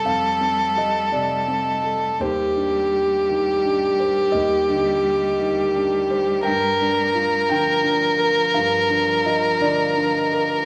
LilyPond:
<<
  \new Staff \with { instrumentName = "Violin" } { \time 6/8 \key c \dorian \tempo 4. = 57 a'2. | g'2.~ | g'2. | bes'2.~ |
bes'2. | }
  \new Staff \with { instrumentName = "Grand piano" } { \time 6/8 \key c \dorian << { f''4 ees''8 d''4. | c''2. | ees''4 r2 | g''4. g''4. |
f''4 ees''8 d''4. | } \\ { <f, a'>8 c'8 g'8 c8 c'8 a'8 | ees,8 d'8 g'8 ees8 d'8 c''8 | ees,8 d8 g'8 ees8 d'8 c''8 | g,8 d'8 f'8 d8 d'8 bes'8 |
g,8 d'8 f'8 d8 d'8 bes'8 | } >> }
  \new Staff \with { instrumentName = "Cello" } { \clef bass \time 6/8 \key c \dorian g2. | g2.~ | g2.~ | g4. f4.~ |
f2. | }
>>